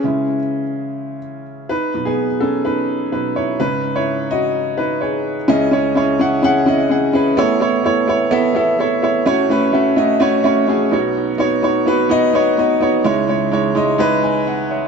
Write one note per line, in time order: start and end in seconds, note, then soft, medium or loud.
0.00 0.36 C#3 soft
0.00 1.19 C#4 medium
0.00 1.18 G#4 medium
0.04 0.36 G#3 soft
0.04 0.36 E4 medium
1.69 1.94 D#4 medium
1.69 2.06 B4 medium
1.94 2.25 B2 medium
1.94 2.26 F#3 soft
1.94 2.26 D#4 medium
2.05 2.40 B3 medium
2.05 2.42 G#4 medium
2.40 2.64 C#4 medium
2.40 2.65 A4 medium
2.65 3.10 D#4 medium
2.65 3.09 B4 medium
3.12 3.34 B2 soft
3.12 3.34 F#3 soft
3.12 3.35 D#4 medium
3.12 3.37 B4 medium
3.36 3.59 E4 medium
3.36 3.60 C#5 medium
3.59 4.27 G#2 soft
3.59 4.27 C#3 soft
3.59 4.28 C#4 medium
3.59 3.93 D#4 medium
3.59 3.93 B4 medium
3.96 4.29 E4 medium
3.96 4.32 C#5 medium
4.31 4.75 F#4 medium
4.31 4.79 D#5 medium
4.78 5.00 D#4 medium
4.78 5.02 B4 medium
5.01 5.35 G#4 medium
5.01 5.34 C#5 medium
5.48 7.34 C#2 medium
5.48 7.34 C#3 medium
5.48 5.66 C#4 loud
5.48 5.67 E4 medium
5.48 5.67 G#4 loud
5.48 5.67 D#5 loud
5.71 5.90 C#4 medium
5.71 5.90 E4 medium
5.71 5.90 G#4 medium
5.71 5.91 C#5 medium
5.95 6.14 C#4 medium
5.95 6.14 E4 medium
5.95 6.14 G#4 medium
5.95 6.14 C#5 medium
6.19 6.37 C#4 medium
6.19 6.38 E4 medium
6.19 6.38 G#4 medium
6.19 6.38 F#5 loud
6.43 6.61 C#4 medium
6.43 6.61 E4 medium
6.43 6.62 G#4 medium
6.43 6.62 F#5 loud
6.66 6.84 C#4 medium
6.66 6.85 E4 medium
6.66 6.85 G#4 medium
6.66 6.85 D#5 medium
6.89 7.08 C#4 medium
6.89 7.08 E4 medium
6.89 7.08 G#4 medium
6.89 7.09 F#5 medium
7.13 7.32 C#4 medium
7.13 7.32 E4 medium
7.13 7.32 G#4 medium
7.13 7.32 B4 medium
7.37 9.23 A1 medium
7.37 9.23 A2 medium
7.37 7.55 B3 loud
7.37 7.56 E4 loud
7.37 7.56 A4 loud
7.37 7.56 C#5 loud
7.60 7.79 B3 medium
7.60 7.79 E4 medium
7.60 7.79 A4 medium
7.60 7.80 C#5 loud
7.84 8.03 B3 medium
7.84 8.03 E4 medium
7.84 8.03 A4 medium
7.84 8.03 C#5 loud
8.08 8.26 B3 medium
8.08 8.26 E4 medium
8.08 8.26 A4 medium
8.08 8.27 C#5 loud
8.31 8.49 B3 loud
8.31 8.50 E4 medium
8.31 8.50 A4 loud
8.31 8.50 E5 loud
8.55 8.73 B3 medium
8.55 8.73 E4 medium
8.55 8.74 A4 medium
8.55 8.74 E5 loud
8.79 8.97 B3 medium
8.79 8.97 E4 medium
8.79 8.98 A4 medium
8.79 8.98 C#5 medium
9.02 9.20 B3 medium
9.02 9.21 E4 medium
9.02 9.21 A4 medium
9.02 9.21 C#5 medium
9.26 10.88 A1 medium
9.26 10.88 A2 medium
9.26 9.44 A3 loud
9.26 9.44 C#4 loud
9.26 9.45 F#4 loud
9.26 9.45 C#5 loud
9.49 9.68 A3 medium
9.49 9.68 C#4 medium
9.49 9.68 F#4 medium
9.49 9.69 B4 loud
9.73 9.91 A3 medium
9.73 9.91 C#4 medium
9.73 9.92 F#4 medium
9.73 9.92 E5 medium
9.96 10.15 A3 medium
9.96 10.15 C#4 medium
9.96 10.15 F#4 medium
9.96 10.16 D#5 loud
10.20 10.38 A3 loud
10.20 10.39 C#4 loud
10.20 10.39 F#4 medium
10.20 10.39 C#5 loud
10.44 10.62 A3 loud
10.44 10.63 C#4 medium
10.44 10.63 F#4 medium
10.44 10.63 C#5 loud
10.68 10.86 A3 medium
10.68 10.86 C#4 medium
10.68 10.86 F#4 medium
10.68 10.87 G#4 medium
10.91 12.77 B1 medium
10.91 12.77 B2 medium
10.91 11.30 B3 medium
10.91 11.30 D#4 medium
10.91 11.30 F#4 medium
10.91 11.30 C#5 medium
11.38 11.57 B3 medium
11.38 11.57 D#4 medium
11.38 11.57 F#4 medium
11.38 11.58 C#5 loud
11.62 11.81 B3 medium
11.62 11.81 D#4 medium
11.62 11.81 F#4 medium
11.62 11.81 C#5 medium
11.86 12.04 B3 medium
11.86 12.05 D#4 medium
11.86 12.05 F#4 medium
11.86 12.05 B4 loud
12.09 12.28 B3 medium
12.09 12.28 D#4 loud
12.09 12.28 F#4 medium
12.09 12.29 D#5 loud
12.33 12.52 B3 medium
12.33 12.52 D#4 medium
12.33 12.52 F#4 medium
12.33 12.52 C#5 loud
12.57 12.75 B3 medium
12.57 12.76 D#4 medium
12.57 12.76 F#4 medium
12.57 12.76 D#5 medium
12.81 12.99 B3 medium
12.81 12.99 D#4 medium
12.81 12.99 F#4 medium
12.81 13.00 C#5 medium
13.04 14.88 C#2 medium
13.04 14.88 C#3 medium
13.04 13.23 G#3 loud
13.04 13.23 D#4 medium
13.04 13.23 E4 loud
13.04 13.24 C#5 loud
13.28 13.46 G#3 medium
13.28 13.46 D#4 medium
13.28 13.47 E4 medium
13.28 13.47 C#5 medium
13.52 13.70 G#3 medium
13.52 13.70 D#4 medium
13.52 13.71 E4 medium
13.52 13.71 C#5 loud
13.75 13.93 G#3 medium
13.75 13.94 D#4 medium
13.75 13.94 E4 medium
13.75 13.94 D#5 medium
13.98 14.17 G#3 loud
13.98 14.17 D#4 medium
13.98 14.17 E4 medium
13.98 14.18 B4 loud
14.24 14.46 E5 medium
14.24 14.46 G#5 medium
14.47 14.70 D#5 medium
14.47 14.69 F#5 medium
14.70 14.88 C#5 medium
14.70 14.88 E5 medium